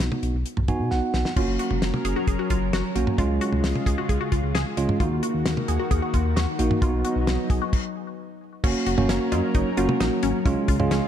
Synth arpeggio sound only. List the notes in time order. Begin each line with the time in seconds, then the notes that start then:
1.36 F4
1.59 F#4
2.05 G#4
2.16 F#4
2.28 G#4
2.39 F#4
2.50 F4
2.73 F#4
3.19 F4
3.41 F#4
3.87 G#4
3.98 F#4
4.09 G#4
4.21 F#4
4.32 F4
4.55 G#4
5.00 F4
5.23 F#4
5.68 G#4
5.79 F#4
5.91 G#4
6.02 F#4
6.14 F4
6.36 F#4
6.82 F4
7.04 F#4
7.50 G#4
7.62 F#4
8.64 C#4
8.87 F#4
9.09 C#4
9.32 F4
9.55 D#4
9.78 F4
10.00 D#4
10.23 C#4
10.46 C#4
10.68 F4
10.91 C#4